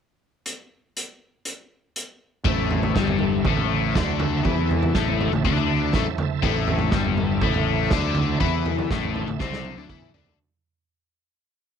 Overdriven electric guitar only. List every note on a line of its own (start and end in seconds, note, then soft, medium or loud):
2.45 2.95 A2 medium
2.45 2.95 A3 medium
2.95 3.45 G2 medium
2.95 3.45 G3 medium
3.46 3.95 A2 medium
3.46 3.95 A3 medium
3.95 4.45 D3 medium
3.95 4.46 D4 medium
4.45 4.94 E3 medium
4.45 4.95 E4 medium
4.95 5.31 A2 medium
4.95 5.32 A3 loud
5.32 5.45 A2 medium
5.45 5.93 D3 medium
5.45 5.94 D4 loud
5.94 6.06 A2 loud
5.94 6.06 A3 loud
6.43 6.92 A2 medium
6.43 6.92 A3 medium
6.92 7.41 G2 medium
6.92 7.42 G3 medium
7.42 7.91 A2 medium
7.42 7.91 A3 loud
7.93 8.40 D3 medium
7.93 8.40 D4 medium
8.40 8.89 E3 medium
8.40 8.89 E4 medium
8.91 9.27 A2 medium
8.91 9.27 A3 medium
9.29 9.39 A2 medium
9.40 9.76 C3 medium
9.40 9.77 C4 medium
9.77 9.88 D3 medium
9.77 9.89 D4 medium
9.89 10.13 E3 medium
9.89 10.13 E4 loud
10.14 10.38 D3 medium
10.14 10.38 D4 loud